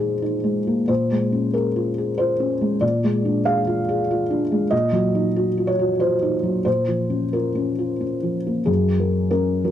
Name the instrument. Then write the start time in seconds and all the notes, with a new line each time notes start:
felt piano
Already playing: A#2 G#3 D#4 C5
0.00 G#4
0.22 D#4
0.44 G#3
0.67 A#3
0.88 A#2 C5
1.11 G#3
1.32 C#4
1.53 G#4 A#4
1.76 F4
1.98 G#4
2.18 F4 C5
2.40 C#4
2.61 G#3
2.81 A#2 D5
3.04 G#3
3.25 D4
3.45 G#4 F5
3.67 F4
3.89 G#4
4.11 F4
4.31 D4
4.52 G#3
4.71 A#2 D#5
4.92 F#3
5.15 D#4
5.36 F#4
5.57 F4
5.67 C#5
5.79 F#4
6.00 F4 C5
6.22 D#4
6.43 F#3
6.65 A#2 C5
6.88 F3
7.10 C#4
7.33 F4 A#4
7.55 C#4
7.79 F4
8.01 C#4
8.23 F3
8.47 A#3
8.66 F#2 G#4
8.99 F#3 A#4
9.31 C#4 A#4
9.64 F#3 A#4